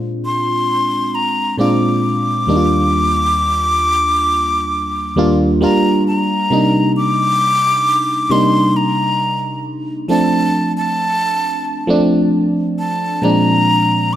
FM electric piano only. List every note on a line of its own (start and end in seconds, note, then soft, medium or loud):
0.00 0.55 A#2 medium
0.00 0.56 G#3 medium
0.00 0.56 C4 medium
0.00 0.56 D4 medium
0.00 0.57 F4 loud
1.58 2.47 A#2 medium
1.58 2.48 G#3 medium
1.58 2.48 C4 medium
1.58 2.48 D4 medium
1.58 2.49 F4 medium
2.47 4.14 D#2 medium
2.47 4.14 G3 medium
2.47 4.14 A#3 medium
2.47 4.15 D4 medium
2.47 2.55 D#4 medium
2.57 4.18 F4 medium
5.16 5.61 D#2 medium
5.16 5.60 G3 medium
5.16 5.60 A#3 medium
5.16 5.61 D4 medium
5.16 5.62 F4 loud
5.61 6.44 G3 medium
5.61 6.45 A#3 medium
5.61 6.45 D4 medium
5.61 6.45 F4 loud
6.50 8.17 C3 medium
6.50 8.17 G3 medium
6.50 8.17 A#3 medium
6.50 8.18 D4 medium
6.50 8.18 D#4 medium
8.30 9.96 C3 medium
8.30 9.96 G3 medium
8.30 9.96 A#3 medium
8.30 9.97 D4 medium
8.30 9.97 D#4 medium
10.08 11.75 F3 medium
10.08 11.75 A3 medium
10.08 11.76 C4 medium
10.08 11.76 D4 medium
11.87 13.21 F3 medium
11.87 13.22 A3 medium
11.87 13.23 C4 medium
11.87 13.23 D4 loud
13.22 14.16 A#2 medium
13.22 14.16 F3 medium
13.22 14.16 G#3 medium
13.22 14.16 C4 medium
13.22 14.16 D4 medium